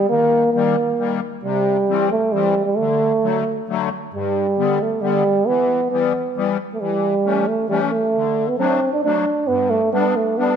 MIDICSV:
0, 0, Header, 1, 3, 480
1, 0, Start_track
1, 0, Key_signature, 1, "major"
1, 0, Tempo, 446761
1, 112, Time_signature, 3, 2, 24, 8
1, 11348, End_track
2, 0, Start_track
2, 0, Title_t, "Euphonium"
2, 0, Program_c, 0, 58
2, 100, Note_on_c, 0, 58, 106
2, 552, Note_off_c, 0, 58, 0
2, 569, Note_on_c, 0, 58, 86
2, 1263, Note_off_c, 0, 58, 0
2, 1548, Note_on_c, 0, 55, 91
2, 2233, Note_off_c, 0, 55, 0
2, 2264, Note_on_c, 0, 57, 93
2, 2499, Note_on_c, 0, 55, 93
2, 2515, Note_off_c, 0, 57, 0
2, 2847, Note_off_c, 0, 55, 0
2, 2853, Note_on_c, 0, 55, 85
2, 2976, Note_on_c, 0, 57, 101
2, 2992, Note_off_c, 0, 55, 0
2, 3946, Note_off_c, 0, 57, 0
2, 4458, Note_on_c, 0, 55, 85
2, 5184, Note_on_c, 0, 57, 73
2, 5200, Note_off_c, 0, 55, 0
2, 5391, Note_on_c, 0, 55, 98
2, 5407, Note_off_c, 0, 57, 0
2, 5880, Note_on_c, 0, 59, 108
2, 5896, Note_off_c, 0, 55, 0
2, 6346, Note_off_c, 0, 59, 0
2, 6353, Note_on_c, 0, 59, 74
2, 7037, Note_off_c, 0, 59, 0
2, 7242, Note_on_c, 0, 57, 59
2, 7313, Note_on_c, 0, 55, 89
2, 7329, Note_off_c, 0, 57, 0
2, 8036, Note_on_c, 0, 57, 73
2, 8052, Note_off_c, 0, 55, 0
2, 8260, Note_off_c, 0, 57, 0
2, 8266, Note_on_c, 0, 55, 80
2, 8377, Note_off_c, 0, 55, 0
2, 8506, Note_on_c, 0, 57, 87
2, 9114, Note_on_c, 0, 59, 79
2, 9130, Note_off_c, 0, 57, 0
2, 9227, Note_off_c, 0, 59, 0
2, 9234, Note_on_c, 0, 60, 86
2, 9570, Note_off_c, 0, 60, 0
2, 9603, Note_on_c, 0, 62, 92
2, 9707, Note_off_c, 0, 62, 0
2, 9713, Note_on_c, 0, 62, 95
2, 10184, Note_on_c, 0, 59, 101
2, 10200, Note_off_c, 0, 62, 0
2, 10426, Note_on_c, 0, 57, 92
2, 10442, Note_off_c, 0, 59, 0
2, 10662, Note_off_c, 0, 57, 0
2, 10669, Note_on_c, 0, 59, 90
2, 10921, Note_on_c, 0, 57, 80
2, 10937, Note_off_c, 0, 59, 0
2, 11151, Note_on_c, 0, 59, 97
2, 11167, Note_off_c, 0, 57, 0
2, 11348, Note_off_c, 0, 59, 0
2, 11348, End_track
3, 0, Start_track
3, 0, Title_t, "Accordion"
3, 0, Program_c, 1, 21
3, 114, Note_on_c, 1, 51, 66
3, 473, Note_off_c, 1, 51, 0
3, 585, Note_on_c, 1, 51, 58
3, 596, Note_on_c, 1, 55, 59
3, 606, Note_on_c, 1, 58, 70
3, 810, Note_off_c, 1, 51, 0
3, 816, Note_off_c, 1, 55, 0
3, 821, Note_off_c, 1, 58, 0
3, 1059, Note_on_c, 1, 51, 49
3, 1065, Note_on_c, 1, 55, 50
3, 1078, Note_on_c, 1, 58, 57
3, 1287, Note_off_c, 1, 51, 0
3, 1290, Note_off_c, 1, 55, 0
3, 1296, Note_off_c, 1, 58, 0
3, 1539, Note_on_c, 1, 48, 68
3, 1904, Note_off_c, 1, 48, 0
3, 2027, Note_on_c, 1, 52, 65
3, 2031, Note_on_c, 1, 55, 61
3, 2039, Note_on_c, 1, 60, 65
3, 2251, Note_off_c, 1, 52, 0
3, 2253, Note_off_c, 1, 55, 0
3, 2257, Note_off_c, 1, 60, 0
3, 2511, Note_on_c, 1, 52, 60
3, 2514, Note_on_c, 1, 55, 48
3, 2524, Note_on_c, 1, 60, 64
3, 2733, Note_off_c, 1, 52, 0
3, 2734, Note_off_c, 1, 55, 0
3, 2739, Note_off_c, 1, 60, 0
3, 3002, Note_on_c, 1, 50, 70
3, 3358, Note_off_c, 1, 50, 0
3, 3462, Note_on_c, 1, 50, 66
3, 3474, Note_on_c, 1, 54, 53
3, 3485, Note_on_c, 1, 57, 57
3, 3690, Note_off_c, 1, 50, 0
3, 3696, Note_off_c, 1, 54, 0
3, 3701, Note_off_c, 1, 57, 0
3, 3955, Note_on_c, 1, 50, 76
3, 3964, Note_on_c, 1, 54, 65
3, 3970, Note_on_c, 1, 57, 70
3, 4178, Note_off_c, 1, 50, 0
3, 4182, Note_off_c, 1, 54, 0
3, 4185, Note_off_c, 1, 57, 0
3, 4444, Note_on_c, 1, 43, 73
3, 4802, Note_off_c, 1, 43, 0
3, 4918, Note_on_c, 1, 50, 57
3, 4924, Note_on_c, 1, 55, 60
3, 4931, Note_on_c, 1, 59, 66
3, 5141, Note_off_c, 1, 50, 0
3, 5144, Note_off_c, 1, 55, 0
3, 5147, Note_off_c, 1, 59, 0
3, 5384, Note_on_c, 1, 50, 59
3, 5397, Note_on_c, 1, 55, 54
3, 5409, Note_on_c, 1, 59, 68
3, 5614, Note_off_c, 1, 50, 0
3, 5621, Note_off_c, 1, 55, 0
3, 5627, Note_off_c, 1, 59, 0
3, 5883, Note_on_c, 1, 52, 73
3, 6241, Note_off_c, 1, 52, 0
3, 6360, Note_on_c, 1, 52, 69
3, 6366, Note_on_c, 1, 55, 60
3, 6371, Note_on_c, 1, 59, 64
3, 6581, Note_off_c, 1, 52, 0
3, 6584, Note_off_c, 1, 55, 0
3, 6586, Note_off_c, 1, 59, 0
3, 6833, Note_on_c, 1, 52, 62
3, 6843, Note_on_c, 1, 55, 59
3, 6855, Note_on_c, 1, 59, 70
3, 7057, Note_off_c, 1, 52, 0
3, 7061, Note_off_c, 1, 55, 0
3, 7067, Note_off_c, 1, 59, 0
3, 7324, Note_on_c, 1, 52, 70
3, 7676, Note_off_c, 1, 52, 0
3, 7786, Note_on_c, 1, 52, 66
3, 7796, Note_on_c, 1, 57, 58
3, 7804, Note_on_c, 1, 61, 62
3, 8009, Note_off_c, 1, 52, 0
3, 8014, Note_off_c, 1, 57, 0
3, 8018, Note_off_c, 1, 61, 0
3, 8265, Note_on_c, 1, 52, 66
3, 8278, Note_on_c, 1, 57, 59
3, 8286, Note_on_c, 1, 61, 76
3, 8489, Note_off_c, 1, 52, 0
3, 8495, Note_off_c, 1, 57, 0
3, 8499, Note_off_c, 1, 61, 0
3, 8766, Note_on_c, 1, 50, 65
3, 9118, Note_off_c, 1, 50, 0
3, 9220, Note_on_c, 1, 54, 71
3, 9228, Note_on_c, 1, 57, 59
3, 9246, Note_on_c, 1, 62, 63
3, 9447, Note_off_c, 1, 54, 0
3, 9451, Note_off_c, 1, 57, 0
3, 9460, Note_off_c, 1, 62, 0
3, 9717, Note_on_c, 1, 54, 58
3, 9726, Note_on_c, 1, 57, 52
3, 9731, Note_on_c, 1, 62, 63
3, 9936, Note_off_c, 1, 54, 0
3, 9941, Note_off_c, 1, 57, 0
3, 9943, Note_off_c, 1, 62, 0
3, 10188, Note_on_c, 1, 43, 67
3, 10550, Note_off_c, 1, 43, 0
3, 10664, Note_on_c, 1, 55, 65
3, 10679, Note_on_c, 1, 59, 63
3, 10683, Note_on_c, 1, 62, 69
3, 10891, Note_off_c, 1, 55, 0
3, 10898, Note_off_c, 1, 59, 0
3, 10901, Note_off_c, 1, 62, 0
3, 11151, Note_on_c, 1, 55, 63
3, 11160, Note_on_c, 1, 59, 51
3, 11165, Note_on_c, 1, 62, 65
3, 11348, Note_off_c, 1, 55, 0
3, 11348, Note_off_c, 1, 59, 0
3, 11348, Note_off_c, 1, 62, 0
3, 11348, End_track
0, 0, End_of_file